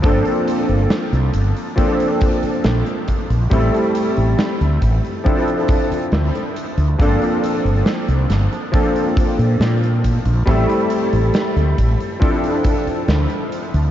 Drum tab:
HH |xxxxxxxxxxxxxxxx|xxxxxxxxxxxxxxxx|xxxxxxxxxxxxxxxx|xxxxxxxxxxxxxxxx|
SD |----o-------o---|----o-------o---|----o-o-----o---|----o-------o---|
BD |o-------o-o---o-|o-----o-o-o-----|o-------o-o---o-|o-----o-o-o-----|